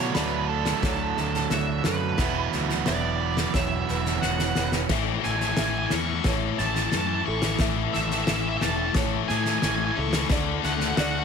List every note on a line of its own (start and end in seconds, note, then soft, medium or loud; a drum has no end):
0.00 0.10 B2 medium
0.00 1.17 D3 medium
0.00 2.16 D3 medium
0.00 2.17 D3 medium
0.00 0.83 F#3 medium
0.00 2.17 F#3 medium
0.00 2.16 A3 medium
0.00 2.18 A3 medium
0.00 0.15 D4 medium
0.00 2.18 D4 medium
0.00 2.16 E4 medium
0.00 4.87 F#4 medium
0.00 0.18 C#5 medium
0.14 0.73 D2 medium
0.14 1.85 A3 medium
0.14 0.46 B4 medium
0.14 0.83 D5 medium
0.14 snare medium
0.49 1.47 A4 medium
0.65 snare medium
0.83 1.12 D2 medium
0.83 2.19 F#3 medium
0.83 1.17 C#5 medium
0.83 kick medium
0.83 snare medium
1.17 1.46 D2 medium
1.17 1.84 A4 medium
1.17 snare soft
1.34 snare soft
1.50 1.80 D2 medium
1.50 2.19 F#4 medium
1.50 1.86 E5 medium
1.50 snare medium
1.84 2.14 F#2 medium
1.84 2.19 A4 medium
1.84 2.50 B4 medium
1.84 snare medium
2.18 2.47 E1 medium
2.18 3.89 E2 medium
2.18 4.88 E3 medium
2.18 4.87 E3 medium
2.18 4.88 F#3 medium
2.18 4.88 B3 medium
2.18 4.89 B3 medium
2.18 4.89 E4 medium
2.18 2.86 E5 medium
2.18 kick medium
2.18 snare medium
2.52 2.82 D2 medium
2.52 4.23 B2 medium
2.52 snare soft
2.69 snare soft
2.86 3.45 E1 medium
2.86 4.57 B3 medium
2.86 3.51 D5 medium
2.86 3.55 E5 medium
2.86 snare medium
3.21 3.87 E4 soft
3.37 snare medium
3.54 3.83 E1 medium
3.54 4.90 E3 medium
3.54 3.89 C#5 medium
3.54 4.24 E5 medium
3.54 kick medium
3.54 snare medium
3.88 4.18 E1 medium
3.88 4.55 E4 medium
3.88 4.56 B4 medium
3.88 snare soft
4.05 snare soft
4.22 4.52 E1 medium
4.22 4.90 F#4 medium
4.22 4.69 F#5 medium
4.22 snare soft
4.39 snare medium
4.55 4.85 E1 medium
4.55 4.90 E4 medium
4.55 4.91 B4 medium
4.55 snare medium
4.72 snare medium
4.88 5.17 A1 medium
4.88 4.97 A2 medium
4.88 6.59 A2 medium
4.88 10.26 E3 medium
4.88 4.97 E3 medium
4.88 10.27 A3 medium
4.88 11.24 E4 medium
4.88 5.57 E5 medium
4.88 kick medium
4.88 snare medium
4.88 crash medium
4.97 5.05 A2 soft
4.97 5.05 E3 medium
5.05 5.13 A2 soft
5.05 5.13 E3 medium
5.13 5.20 A2 soft
5.13 5.21 E3 medium
5.21 5.28 A2 soft
5.21 5.29 E3 medium
5.21 6.25 A3 medium
5.21 5.31 G#5 medium
5.21 snare soft
5.25 5.52 A1 medium
5.25 5.36 A2 soft
5.25 5.36 E3 medium
5.31 5.39 G#5 soft
5.36 5.43 A2 soft
5.36 5.44 E3 medium
5.36 5.47 G#5 medium
5.40 5.51 A2 soft
5.40 snare soft
5.45 5.51 E3 medium
5.45 5.54 G#5 soft
5.51 5.59 A2 soft
5.51 5.59 E3 medium
5.51 5.63 G#5 medium
5.57 5.85 A1 medium
5.57 5.66 A2 soft
5.57 5.67 E3 medium
5.57 6.26 E5 medium
5.57 snare medium
5.63 5.74 A2 soft
5.63 5.75 E3 medium
5.63 5.70 G#5 soft
5.70 5.82 A2 soft
5.70 5.78 G#5 medium
5.75 5.82 E3 medium
5.75 5.86 G#5 soft
5.82 5.89 A2 soft
5.82 5.90 E3 medium
5.86 5.96 A2 soft
5.86 5.94 G#5 medium
5.86 snare medium
5.91 6.19 E2 medium
5.91 5.98 E3 medium
5.91 6.92 C#4 soft
5.91 6.23 C#6 medium
5.96 6.04 A2 medium
5.96 6.06 E3 medium
6.05 6.12 A2 soft
6.05 6.14 E3 medium
6.13 6.20 A2 soft
6.13 6.21 E3 medium
6.21 6.28 A2 soft
6.21 6.29 E3 medium
6.21 kick loud
6.21 snare loud
6.25 6.52 A1 medium
6.25 6.36 A2 medium
6.25 7.94 A3 medium
6.25 6.60 C#5 medium
6.29 6.35 E3 medium
6.35 6.43 A2 soft
6.35 6.43 E3 medium
6.43 6.51 A2 soft
6.43 6.52 E3 medium
6.51 6.59 A2 soft
6.51 6.59 E3 medium
6.58 6.86 A1 medium
6.58 6.66 A2 soft
6.58 6.67 E3 medium
6.58 6.66 A5 medium
6.58 snare soft
6.66 6.74 A2 soft
6.66 6.74 E3 medium
6.66 6.74 A5 medium
6.74 6.82 A2 soft
6.74 6.82 E3 medium
6.74 6.82 A5 medium
6.74 snare soft
6.82 6.89 A2 soft
6.82 6.89 E3 medium
6.82 6.90 A5 medium
6.89 6.97 A2 soft
6.89 6.96 E3 medium
6.89 8.61 C#4 medium
6.89 6.97 A5 medium
6.89 snare medium
6.94 7.20 F#2 medium
6.94 7.04 A2 soft
6.94 7.04 E3 medium
6.94 7.05 A5 medium
7.05 7.12 A2 soft
7.05 7.14 E3 medium
7.05 7.14 A5 medium
7.13 7.20 A2 soft
7.13 7.22 E3 medium
7.13 7.23 A5 medium
7.21 7.28 A2 soft
7.21 7.29 E3 medium
7.26 7.54 A1 medium
7.26 7.35 A2 soft
7.26 8.96 E3 medium
7.26 7.37 E3 medium
7.26 7.61 A4 medium
7.26 7.58 C#6 medium
7.36 7.43 A2 soft
7.36 7.43 E3 medium
7.42 7.51 A2 soft
7.42 7.51 E3 medium
7.42 snare medium
7.51 7.60 A2 soft
7.51 7.59 E3 medium
7.59 7.87 A1 medium
7.59 7.67 A2 medium
7.59 9.30 A2 medium
7.59 7.69 E3 medium
7.59 8.27 E5 medium
7.59 kick medium
7.59 snare medium
7.68 7.75 A2 soft
7.68 7.77 E3 medium
7.76 7.83 A2 medium
7.76 7.84 E3 medium
7.83 7.91 A2 medium
7.83 7.91 E3 medium
7.91 7.98 A2 medium
7.91 7.99 E3 medium
7.91 8.94 A3 medium
7.91 8.01 E5 medium
7.91 snare soft
7.96 8.22 A1 medium
7.96 8.07 A2 soft
8.00 8.07 E3 medium
8.00 8.09 E5 soft
8.07 8.14 A2 medium
8.07 8.15 E3 medium
8.07 8.17 E5 medium
8.07 snare soft
8.15 8.21 A2 medium
8.15 8.23 E3 medium
8.15 8.24 E5 medium
8.22 8.29 A2 medium
8.22 8.30 E3 medium
8.22 8.32 E5 medium
8.27 8.56 A1 medium
8.27 8.37 A2 medium
8.27 8.38 E3 medium
8.27 8.96 E5 medium
8.27 snare medium
8.33 8.40 E5 soft
8.37 8.45 A2 medium
8.37 8.45 E3 medium
8.37 8.48 E5 medium
8.45 8.53 A2 medium
8.45 8.53 E3 medium
8.45 8.56 E5 soft
8.53 8.60 A2 medium
8.53 8.60 E3 medium
8.53 8.65 E5 medium
8.60 8.89 E1 medium
8.60 8.67 A2 medium
8.60 8.68 E3 medium
8.60 9.62 C#4 medium
8.60 8.93 A5 medium
8.60 snare medium
8.68 8.76 A2 medium
8.68 8.76 E3 medium
8.76 8.83 A2 medium
8.76 8.84 E3 medium
8.84 8.91 A2 medium
8.84 8.92 E3 medium
8.91 8.99 A2 medium
8.91 8.99 E3 medium
8.91 kick loud
8.91 snare loud
8.95 9.22 A1 medium
8.95 10.31 A3 medium
8.95 9.30 C#5 medium
9.00 9.06 A2 medium
9.00 9.07 E3 medium
9.07 9.13 A2 medium
9.07 9.15 E3 medium
9.14 9.21 A2 medium
9.14 9.23 E3 medium
9.22 9.30 A2 medium
9.22 9.31 E3 medium
9.28 9.57 A2 medium
9.28 9.38 A2 medium
9.28 9.38 E3 medium
9.28 10.31 G#4 medium
9.28 9.36 G#5 medium
9.28 snare soft
9.37 9.46 A2 medium
9.37 9.46 E3 medium
9.37 9.43 G#5 medium
9.44 9.53 A2 medium
9.44 9.54 E3 medium
9.44 9.50 G#5 medium
9.44 snare soft
9.51 9.61 A2 medium
9.51 9.61 E3 medium
9.51 9.58 G#5 medium
9.59 9.68 A2 medium
9.59 9.68 E3 medium
9.59 9.66 G#5 medium
9.59 snare medium
9.63 9.90 A1 medium
9.63 10.31 C#4 medium
9.68 9.76 A2 medium
9.68 9.76 E3 medium
9.68 9.75 G#5 medium
9.75 9.84 A2 medium
9.75 9.85 E3 medium
9.75 9.83 G#5 medium
9.84 9.91 A2 soft
9.84 9.93 E3 medium
9.84 9.91 G#5 medium
9.91 10.00 A2 medium
9.91 9.99 E3 medium
9.91 9.99 G#5 medium
9.96 10.24 C#2 medium
9.96 10.31 E3 medium
9.96 10.07 E3 medium
9.96 10.32 A4 medium
9.96 10.28 C#6 medium
10.00 10.07 A2 soft
10.07 10.15 A2 medium
10.07 10.15 E3 medium
10.13 10.22 A2 soft
10.13 snare medium
10.17 10.24 E3 medium
10.22 10.30 A2 medium
10.22 10.29 E3 medium
10.30 10.57 D2 medium
10.30 10.37 D3 medium
10.30 11.24 D3 medium
10.30 10.37 A3 medium
10.30 11.24 A3 medium
10.30 11.24 F#4 medium
10.30 10.98 D5 medium
10.30 kick loud
10.30 snare medium
10.37 10.44 D3 soft
10.37 10.45 A3 medium
10.44 10.52 D3 medium
10.44 10.53 A3 medium
10.52 10.60 D3 soft
10.52 10.61 A3 medium
10.61 10.91 D2 medium
10.61 10.68 D3 medium
10.61 10.69 A3 medium
10.61 11.24 A3 medium
10.61 10.72 F#5 medium
10.61 snare soft
10.68 10.75 D3 soft
10.68 10.77 A3 medium
10.72 10.84 D3 medium
10.72 10.79 F#5 medium
10.77 10.83 A3 medium
10.77 10.87 F#5 medium
10.77 snare soft
10.83 10.91 D3 medium
10.83 10.91 A3 medium
10.88 10.99 D3 medium
10.88 10.95 F#5 medium
10.93 10.99 A3 medium
10.93 11.02 F#5 medium
10.97 11.24 D2 medium
10.97 11.07 D3 medium
10.97 11.07 A3 medium
10.97 11.24 F#4 medium
10.97 11.24 D5 medium
10.97 snare loud
11.02 11.10 F#5 medium
11.07 11.14 D3 medium
11.07 11.15 A3 medium
11.12 11.21 D3 medium
11.12 11.22 A3 medium
11.12 11.19 F#5 medium
11.19 11.24 F#5 medium